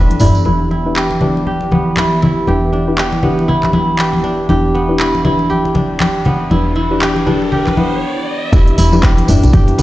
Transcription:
Already playing: analog synth pad E3 B3 D4 A4, synth stab D4 E4 G4 B4, kora D4 E4 G4 B4 E5
0.10 closed hi-hat, high conga
0.19 fm bass E1, synth stab D4 E4 G4 D5, kora E4, mid tom, open hi-hat, tambourine, muted conga
0.35 tambourine
0.45 fm bass E1, analog synth pad E3 B3 E4 G4, synth stab D4 E4 G4 B4, kora E4, muted conga, high conga
0.71 kora E4, muted conga
0.86 synth stab D4 E4 G4 B4
0.96 kora G4, clap
1.11 muted conga
1.21 kora D4, synth stab D4 E4 G4 B4, high conga, low conga
1.37 muted conga
1.47 kora G4, high conga
1.61 muted conga
1.72 kora B3, high conga, low conga
1.97 kora E4, clap, muted conga, high conga
2.22 kora E4, muted conga, high conga, low conga
2.47 fm bass E1, synth stab D4 E4 G4 B4, kora G4, muted conga, high conga
2.72 kora D4, muted conga
2.88 synth stab D4 E4 G4 B4
2.98 kora G4, clap
3.12 muted conga
3.23 kora B3, synth stab D4 E4 G4 B4, high conga, low conga
3.39 muted conga
3.48 kora E4, low conga
3.63 clap, muted conga, high conga
3.73 kora E4, high conga
3.99 kora G4, clap, muted conga
4.13 high conga
4.24 kora D4, muted conga
4.49 fm bass E1, synth stab D4 E4 G4 B4, kora G4, riser, muted conga, high conga
4.75 kora B3, muted conga
4.89 synth stab D4 E4 G4 B4
5.00 kora E4, clap
5.15 muted conga
5.25 synth stab D4 E4 G4 B4, kora E4, high conga, low conga
5.39 muted conga
5.50 kora G4, high conga
5.65 muted conga
5.75 kora D4, high conga, low conga
6.00 kora G4, clap, muted conga, high conga
6.25 kora B3, muted conga, high conga, low conga
6.51 fm bass E1, synth stab D4 E4 G4 B4, kora E4, muted conga, high conga
6.76 kora E4, muted conga
6.91 synth stab D4 E4 G4 B4
7.01 kora G4, clap
7.16 muted conga
7.26 kora D4, synth stab D4 E4 G4 B4, high conga, low conga
7.42 muted conga
7.52 kora G4, low conga
7.67 clap, muted conga, high conga
7.77 kora B3, synth stab D4 E4 G4 B4, high conga
8.52 fm bass E1, analog synth pad E3 B3 E4 G4, synth stab D4 E4 G4 B4, kora E4, kick, closed hi-hat, tambourine, muted conga
8.67 closed hi-hat
8.78 fm bass E1, kora E4, open hi-hat, tambourine, muted conga
8.93 synth stab D4 E4 G4 B4, tambourine, high conga
9.03 kora G4, kick, cross-stick, clap, closed hi-hat, tambourine
9.17 closed hi-hat, muted conga
9.28 fm bass E1, synth stab D4 E4 G4 B4, kora D4, mid tom, open hi-hat, tambourine
9.43 fm bass B1, closed hi-hat, tambourine, muted conga
9.53 kora G4, kick, closed hi-hat, mid tom, tambourine, high conga, low conga
9.68 closed hi-hat, muted conga
9.78 fm bass B1, kora B3, open hi-hat, tambourine, low conga

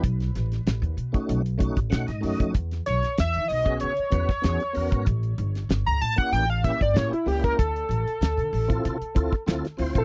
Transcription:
0.04 upright bass B1, kick, closed hi-hat
0.20 snare, closed hi-hat
0.35 upright bass A1, snare, closed hi-hat
0.52 snare, closed hi-hat
0.66 upright bass A1, snare, closed hi-hat
0.82 upright bass D#2, closed hi-hat
0.97 upright bass B2, closed hi-hat
1.12 tonewheel organ A3 C#4 D#4 F#4, muted upright bass stroke, kick, closed hi-hat
1.29 upright bass B1, closed hi-hat
1.46 closed hi-hat
1.58 tonewheel organ A3 C#4 D#4 F#4, kick, closed hi-hat
1.77 upright bass A1, kick, closed hi-hat
1.90 upright bass B2, tonewheel organ A3 C#4 D#4 F#4 F#5, snare, closed hi-hat
2.07 upright bass G#2, tonewheel organ D#5, snare, closed hi-hat
2.21 upright bass F#2, tonewheel organ A3 C#4 D#4 F#4, open hi-hat
2.40 upright bass F2, kick, closed hi-hat
2.54 upright bass E2, kick, closed hi-hat
2.71 snare, closed hi-hat
2.86 upright bass B1, analog synth lead C#5, snare, closed hi-hat
3.03 muted upright bass stroke, snare, closed hi-hat
3.18 upright bass E2, analog synth lead E5, snare, closed hi-hat
3.34 upright bass E3, closed hi-hat
3.48 upright bass B1, analog synth lead D#5, open hi-hat
3.64 tonewheel organ B3 C#4 F#4 G#4, kick, closed hi-hat
3.80 upright bass C#3, analog synth lead C#5, closed hi-hat
3.97 muted upright bass stroke, closed hi-hat
4.10 upright bass E2, tonewheel organ B3 C#4 F#4 B4, analog synth lead C#5, kick, closed hi-hat
4.29 kick, snare
4.42 upright bass E2, tonewheel organ B3 C#4 F#4 G#4, snare, closed hi-hat
4.60 closed hi-hat
4.73 upright bass E2, tonewheel organ B3 C#4 F#4 A#4, open hi-hat
4.92 upright bass G#2, kick, closed hi-hat
5.06 upright bass A1, kick, closed hi-hat
5.23 closed hi-hat
5.38 upright bass G1, closed hi-hat
5.55 snare, closed hi-hat
5.69 upright bass G1, snare, closed hi-hat
5.86 upright bass C#2, analog synth lead A#5, closed hi-hat
6.01 upright bass A2, analog synth lead A5, closed hi-hat
6.16 tonewheel organ A#3 C#4 E4 G4, analog synth lead F#5, muted upright bass stroke, kick, closed hi-hat
6.32 upright bass A1, analog synth lead G5, closed hi-hat
6.50 analog synth lead F5, closed hi-hat
6.63 tonewheel organ A#3 C#4 E4 G4, analog synth lead E5, kick, closed hi-hat
6.81 upright bass G1, analog synth lead D5, kick, closed hi-hat
6.94 upright bass A2, tonewheel organ A#3 C#4 E4 G4, analog synth lead C#5, snare, closed hi-hat
7.11 analog synth lead E4, muted upright bass stroke, closed hi-hat
7.26 upright bass C#2, tonewheel organ A#3 C#4 E4 G4, analog synth lead G4, open hi-hat
7.44 analog synth lead A#4, kick, closed hi-hat
7.59 upright bass D2, analog synth lead A4, kick, closed hi-hat
7.76 closed hi-hat
7.89 upright bass A1, closed hi-hat
8.06 muted upright bass stroke, closed hi-hat
8.21 upright bass D2, snare, closed hi-hat
8.37 upright bass D3, closed hi-hat
8.53 upright bass A1, open hi-hat
8.68 tonewheel organ C4 E4 F4 A4, kick, closed hi-hat
8.85 upright bass C3, closed hi-hat
9.01 muted upright bass stroke, closed hi-hat
9.15 upright bass D2, tonewheel organ C4 E4 F4 A4, kick, closed hi-hat
9.33 kick
9.47 upright bass D2, tonewheel organ C4 E4 F4 A4, snare, closed hi-hat
9.65 snare, closed hi-hat
9.77 upright bass D2, tonewheel organ C4 E4 F4 C5, open hi-hat
9.95 upright bass A#1, analog synth lead A4, kick, closed hi-hat

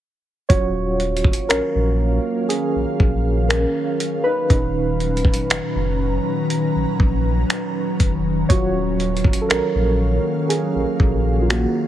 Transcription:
0.49 sub bass D#1, ambient pad D#3 F#3 A#3 C#4 F5, synth keys F#3 C#4 F4 F#4 C#5, kick, closed hi-hat
1.00 closed hi-hat
1.17 closed hi-hat
1.24 kick
1.33 closed hi-hat
1.49 sub bass A#1, synth keys C#4 A#4, finger snap, closed hi-hat
1.75 sub bass A#1
2.49 synth keys C#4 G#4, closed hi-hat
2.75 sub bass A#1
3.00 sub bass A#1, kick
3.49 synth keys C#4 A#4, finger snap, closed hi-hat
4.00 closed hi-hat
4.24 synth keys D#4 B4
4.50 sub bass D#1, synth keys A#2 C#4 D#4, ambient pad B4 A#5, kick, closed hi-hat
5.00 closed hi-hat
5.17 closed hi-hat
5.25 kick
5.34 closed hi-hat
5.50 sub bass F#1, finger snap, closed hi-hat
5.75 sub bass F#1
6.50 closed hi-hat
6.75 sub bass A#1
7.00 sub bass A#1, kick
7.50 finger snap, closed hi-hat
8.00 sub bass F1, kick, closed hi-hat
8.49 sub bass D#1, synth keys F#3 C#4 F4 F#4 C#5, ambient pad A#3 F5, kick, closed hi-hat
9.00 closed hi-hat
9.17 closed hi-hat
9.24 kick
9.33 closed hi-hat
9.41 synth keys A4
9.49 sub bass A#1, synth keys C#4 A#4, finger snap, closed hi-hat
9.75 sub bass A#1
10.49 synth keys C#4 G#4, closed hi-hat
10.75 sub bass A#1
11.00 sub bass A#1, kick
11.42 synth keys F4
11.49 synth keys A#3 F#4, finger snap, closed hi-hat

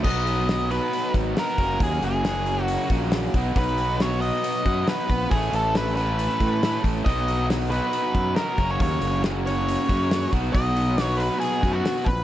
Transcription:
0.04 fingered electric bass B1, distorted electric guitar B2 F#3 B3 D#4 F#4, lead electric guitar D#5, kick, crash
0.27 open hi-hat
0.49 snare, open hi-hat
0.70 distorted electric guitar B2 F#3 B3 D#4 F#4, lead electric guitar B4, open hi-hat
0.93 open hi-hat
1.14 fingered electric bass G#1, kick, open hi-hat
1.35 distorted electric guitar B2 F#3 B3 D#4 F#4, lead electric guitar A#4, snare, open hi-hat
1.58 fingered electric bass F#1, distorted electric guitar F#2 C#3 F#3 A#3 C#4 F#4, kick, open hi-hat
1.80 fingered electric bass D#2, lead electric guitar G#4, kick, open hi-hat
2.02 fingered electric bass F#1, lead electric guitar G#4, open hi-hat
2.23 distorted electric guitar F#2 C#3 F#3 A#3 C#4 F#4, snare, open hi-hat
2.46 open hi-hat
2.64 lead electric guitar F#4, open hi-hat
2.90 fingered electric bass A#1, distorted electric guitar F#2 C#3 F#3 A#3 C#4 F#4, kick, open hi-hat
3.12 snare, open hi-hat
3.34 fingered electric bass B1, distorted electric guitar B2 F#3 B3 D#4, kick, open hi-hat
3.38 distorted electric guitar F#4
3.56 fingered electric bass B1, lead electric guitar B4, kick, open hi-hat
3.78 open hi-hat
4.00 distorted electric guitar B2 F#3 B3 D#4 F#4, lead electric guitar C#5, snare, open hi-hat
4.21 lead electric guitar D#5, open hi-hat
4.44 open hi-hat
4.65 fingered electric bass F#2, distorted electric guitar B2 F#3 B3 D#4 F#4, kick, open hi-hat
4.87 lead electric guitar B4, snare, open hi-hat
5.09 fingered electric bass A#1, kick, open hi-hat
5.30 fingered electric bass A1, distorted electric guitar A2 E3 A3 C#4 A4, lead electric guitar G#4, kick, open hi-hat
5.53 fingered electric bass A1, lead electric guitar A4, open hi-hat
5.75 lead electric guitar B4, snare, open hi-hat
5.96 distorted electric guitar A2 E3 A3 C#4 A4, lead electric guitar B4, open hi-hat
6.19 open hi-hat
6.40 fingered electric bass A2, kick, open hi-hat
6.62 distorted electric guitar A2 E3 A3 C#4 A4, snare, open hi-hat
6.84 fingered electric bass A1, kick, open hi-hat
7.05 fingered electric bass B1, distorted electric guitar B2 F#3 B3 D#4 F#4, lead electric guitar D#5, kick, open hi-hat
7.28 open hi-hat
7.50 snare, open hi-hat
7.70 distorted electric guitar B2 F#3 B3 D#4 F#4, lead electric guitar B4, open hi-hat
7.93 open hi-hat
8.15 fingered electric bass F#2, kick, open hi-hat
8.36 distorted electric guitar B2 F#3 B3 D#4 F#4, lead electric guitar A#4, snare, open hi-hat
8.57 fingered electric bass F#1, distorted electric guitar F#2 C#3 F#3 A#3 C#4 F#4, kick, open hi-hat
8.71 lead electric guitar C#5
8.80 fingered electric bass D#2, lead electric guitar C#5, kick, open hi-hat
9.01 fingered electric bass F#1, open hi-hat
9.24 distorted electric guitar F#2 C#3 F#3 A#3 C#4 F#4, snare, open hi-hat
9.46 lead electric guitar C#5, open hi-hat
9.68 open hi-hat
9.89 fingered electric bass F#2, distorted electric guitar F#2 C#3 F#3 A#3 C#4 F#4, kick, open hi-hat
10.11 snare, open hi-hat
10.32 fingered electric bass B1, distorted electric guitar B2 F#3 B3 D#4 F#4, kick, open hi-hat
10.53 fingered electric bass B1, lead electric guitar D#5, kick, open hi-hat
10.77 open hi-hat
10.98 distorted electric guitar B2 F#3 B3 D#4 F#4, snare, open hi-hat
11.04 lead electric guitar C#5
11.17 lead electric guitar B4, open hi-hat
11.40 lead electric guitar G#4, open hi-hat
11.63 fingered electric bass F#2, distorted electric guitar B2 F#3 B3 D#4 F#4, kick, open hi-hat
11.72 lead electric guitar F#4
11.85 snare, open hi-hat
12.05 fingered electric bass A#1, lead electric guitar B4, kick, open hi-hat

